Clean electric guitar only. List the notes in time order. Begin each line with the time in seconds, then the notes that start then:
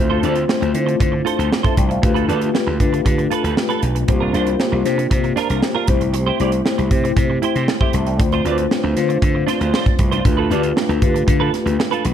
0.10 F4 A4 C5
0.23 F4 A4 D5
0.35 muted clean electric guitar stroke
0.48 muted clean electric guitar stroke
0.61 muted clean electric guitar stroke
0.86 muted clean electric guitar stroke
1.00 muted clean electric guitar stroke
1.12 muted clean electric guitar stroke
1.25 F4 A4 C5
1.37 F4 A4 C5
1.51 muted clean electric guitar stroke
1.63 F4 A4 C5
1.76 muted clean electric guitar stroke
1.89 muted clean electric guitar stroke
2.02 muted clean electric guitar stroke
2.14 F4 A4 B4
2.28 F4 A4 D5
2.41 muted clean electric guitar stroke
2.54 muted clean electric guitar stroke
2.67 muted clean electric guitar stroke
2.93 muted clean electric guitar stroke
3.05 muted clean electric guitar stroke
3.18 muted clean electric guitar stroke
3.31 F4 A4 B4
3.43 F4 A4 B4
3.56 muted clean electric guitar stroke
3.69 F4 A4 B4
3.82 muted clean electric guitar stroke
3.95 muted clean electric guitar stroke
4.08 muted clean electric guitar stroke
4.20 D4 F4 A#4
4.33 D4 F4 C5
4.47 muted clean electric guitar stroke
4.59 muted clean electric guitar stroke
4.72 muted clean electric guitar stroke
4.98 muted clean electric guitar stroke
5.11 muted clean electric guitar stroke
5.24 muted clean electric guitar stroke
5.36 D4 F4 A#4
5.49 D4 F4 A#4
5.62 muted clean electric guitar stroke
5.75 D4 F4 A#4
5.88 muted clean electric guitar stroke
6.01 muted clean electric guitar stroke
6.13 muted clean electric guitar stroke
6.26 E4 G4 C5
6.39 E4 G4 D5
6.52 muted clean electric guitar stroke
6.65 muted clean electric guitar stroke
6.78 muted clean electric guitar stroke
7.04 muted clean electric guitar stroke
7.16 muted clean electric guitar stroke
7.30 muted clean electric guitar stroke
7.42 E4 G4 C5
7.55 E4 G4 C5
7.68 muted clean electric guitar stroke
7.81 E4 G4 C5
7.94 muted clean electric guitar stroke
8.07 muted clean electric guitar stroke
8.20 muted clean electric guitar stroke
8.33 D4 F4 C5
8.45 D4 F4 D5
8.58 muted clean electric guitar stroke
8.71 muted clean electric guitar stroke
8.84 muted clean electric guitar stroke
9.09 muted clean electric guitar stroke
9.22 muted clean electric guitar stroke
9.35 muted clean electric guitar stroke
9.47 D4 F4 C5
9.60 D4 F4 C5
9.73 D4 F4 C5
9.86 muted clean electric guitar stroke
9.99 muted clean electric guitar stroke
10.11 D4 F4 C5
10.25 muted clean electric guitar stroke
10.37 F4 A4 B4
10.50 F4 A4 D5
10.63 muted clean electric guitar stroke
10.76 muted clean electric guitar stroke
10.89 muted clean electric guitar stroke
11.14 muted clean electric guitar stroke
11.27 muted clean electric guitar stroke
11.40 F4 A4 B4
11.53 muted clean electric guitar stroke
11.66 muted clean electric guitar stroke
11.79 muted clean electric guitar stroke
11.91 F4 A4 B4
12.04 muted clean electric guitar stroke